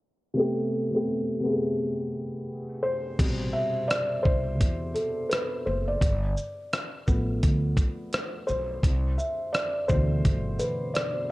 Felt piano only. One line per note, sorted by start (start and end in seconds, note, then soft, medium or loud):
0.34 0.82 C3 medium
0.34 0.83 A3 medium
0.34 0.84 B3 medium
0.39 0.85 G4 loud
0.91 1.35 C3 medium
0.91 1.36 A3 medium
0.91 1.37 B3 medium
0.96 1.37 G4 medium
1.40 2.64 C3 medium
1.40 2.65 A3 medium
1.40 2.66 B3 medium
1.46 1.52 G#4 medium
1.52 2.70 A4 medium
2.83 3.50 C5 medium
3.19 3.70 B2 medium
3.19 3.69 C3 medium
3.19 3.70 G3 medium
3.53 3.90 E5 medium
3.88 4.25 D5 loud
4.23 4.97 C5 loud
4.94 5.31 A4 medium
5.29 5.63 B4 medium
5.66 5.89 C5 medium
5.88 6.90 D5 medium
7.07 7.57 F3 medium
7.07 7.58 A3 soft
7.07 7.58 B3 medium
8.47 9.20 C5 medium
9.18 9.55 E5 medium
9.53 9.90 D5 medium
9.88 11.31 B2 medium
9.88 11.31 D3 medium
9.88 11.31 E3 medium
9.88 11.31 A3 medium
9.88 10.62 C5 loud
10.59 10.93 B4 medium
10.94 11.31 D5 medium